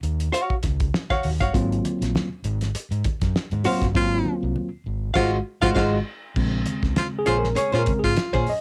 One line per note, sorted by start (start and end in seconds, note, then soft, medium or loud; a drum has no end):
0.03 0.27 D#2 medium
0.03 closed hi-hat medium
0.03 muted conga soft
0.20 closed hi-hat medium
0.32 0.54 F#4 medium
0.32 0.54 C#5 medium
0.32 0.55 F5 medium
0.32 closed hi-hat medium
0.50 kick medium
0.63 0.88 C#2 medium
0.63 kick medium
0.63 snare soft
0.63 closed hi-hat medium
0.63 muted conga soft
0.63 high conga medium
0.80 kick medium
0.80 closed hi-hat soft
0.94 snare loud
0.94 muted conga soft
1.10 1.29 F#4 medium
1.10 1.28 C#5 medium
1.10 1.28 F5 medium
1.10 kick medium
1.10 snare soft
1.10 closed hi-hat soft
1.10 high conga medium
1.23 1.38 D#2 medium
1.23 open hi-hat medium
1.23 muted conga soft
1.23 high conga soft
1.23 low conga medium
1.40 1.51 G1 medium
1.40 1.54 F#4 medium
1.40 1.54 C#5 medium
1.40 1.54 F5 medium
1.40 kick medium
1.40 snare soft
1.40 closed hi-hat medium
1.40 low conga medium
1.54 1.78 G#1 medium
1.54 2.27 F#3 medium
1.54 2.27 A#3 medium
1.54 2.27 C4 medium
1.54 2.27 F4 medium
1.54 kick loud
1.54 closed hi-hat medium
1.72 closed hi-hat soft
1.85 closed hi-hat medium
1.85 muted conga soft
1.85 high conga medium
2.01 2.12 A#1 medium
2.01 snare soft
2.01 closed hi-hat medium
2.15 snare loud
2.15 muted conga soft
2.15 high conga medium
2.44 2.69 G#1 loud
2.44 closed hi-hat medium
2.61 snare soft
2.61 closed hi-hat medium
2.75 muted fingered electric bass stroke soft
2.75 closed hi-hat medium
2.91 3.02 G#2 medium
2.91 closed hi-hat soft
3.04 kick medium
3.04 closed hi-hat medium
3.04 muted conga soft
3.04 high conga medium
3.21 3.32 F#2 loud
3.21 kick medium
3.21 snare soft
3.21 closed hi-hat medium
3.35 snare loud
3.35 muted conga soft
3.51 3.62 G#2 loud
3.51 closed hi-hat soft
3.51 high conga medium
3.64 3.84 F#3 medium
3.64 3.84 A#3 medium
3.64 3.84 C4 medium
3.64 3.84 F4 medium
3.64 3.85 F#4 medium
3.64 3.86 C5 medium
3.64 3.86 F5 medium
3.64 open hi-hat medium
3.64 muted conga soft
3.64 high conga soft
3.64 low conga medium
3.81 3.95 G1 medium
3.81 kick medium
3.81 snare soft
3.81 closed hi-hat medium
3.81 low conga medium
3.94 4.20 G#1 medium
3.94 4.68 F#3 medium
3.94 4.68 A#3 medium
3.94 4.68 C4 medium
3.94 4.68 F4 medium
3.94 4.36 F4 loud
3.94 kick loud
3.94 muted conga soft
4.25 muted conga soft
4.25 high conga medium
4.43 4.53 C2 loud
4.56 muted conga soft
4.56 high conga medium
4.86 5.10 G#1 medium
5.14 5.37 G#1 loud
5.14 5.37 G#3 loud
5.14 5.37 F4 loud
5.14 5.32 F4 loud
5.14 5.37 F#4 loud
5.14 5.37 C5 loud
5.14 5.36 F5 loud
5.14 kick loud
5.14 snare loud
5.14 crash medium
5.62 5.74 G#1 loud
5.62 5.74 G#3 medium
5.62 5.71 F4 loud
5.62 5.74 F4 medium
5.62 5.74 F#4 loud
5.62 5.74 C5 medium
5.62 5.73 F5 loud
5.62 kick loud
5.62 snare loud
5.75 5.97 G#1 medium
5.75 5.97 G#3 loud
5.75 5.97 F4 loud
5.75 5.92 F4 medium
5.75 5.97 F#4 medium
5.75 5.97 C5 loud
5.75 5.96 F5 loud
5.75 kick loud
5.75 snare loud
5.75 crash medium
6.36 6.60 A#1 loud
6.36 7.87 C#3 soft
6.36 7.87 G#3 soft
6.36 7.87 C4 medium
6.36 kick loud
6.36 crash medium
6.66 closed hi-hat medium
6.66 high conga medium
6.83 6.94 C#2 medium
6.83 kick medium
6.83 snare soft
6.96 7.08 F4 medium
6.96 7.07 F4 medium
6.96 snare loud
6.96 closed hi-hat loud
6.96 high conga medium
7.19 7.38 G#4 medium
7.26 7.51 A#1 loud
7.26 7.47 C#4 medium
7.26 7.37 F4 medium
7.26 7.47 G#4 medium
7.26 7.47 C5 medium
7.26 closed hi-hat medium
7.26 muted conga soft
7.38 7.58 A#4 medium
7.44 snare soft
7.55 7.72 C#4 medium
7.55 7.72 G#4 medium
7.55 7.72 C#5 medium
7.55 7.76 C#5 loud
7.55 muted fingered electric bass stroke soft
7.55 closed hi-hat loud
7.55 muted conga soft
7.72 7.84 A#2 medium
7.72 7.91 C#4 medium
7.72 7.83 F4 medium
7.72 7.91 G#4 medium
7.72 7.91 C5 medium
7.79 7.99 A#4 medium
7.86 8.15 C#3 soft
7.86 8.15 G#3 soft
7.86 8.15 C4 soft
7.86 kick medium
7.86 closed hi-hat medium
7.86 muted conga soft
7.86 high conga medium
7.99 8.12 G#4 medium
8.04 8.15 G#2 medium
8.04 8.45 F4 loud
8.04 kick medium
8.04 snare soft
8.16 snare loud
8.16 closed hi-hat medium
8.33 8.44 A#2 medium
8.33 8.52 C#4 medium
8.33 8.52 G#4 medium
8.33 8.51 C5 medium
8.33 kick medium
8.33 high conga medium
8.47 8.61 D#5 medium
8.47 open hi-hat medium
8.47 high conga soft
8.47 low conga medium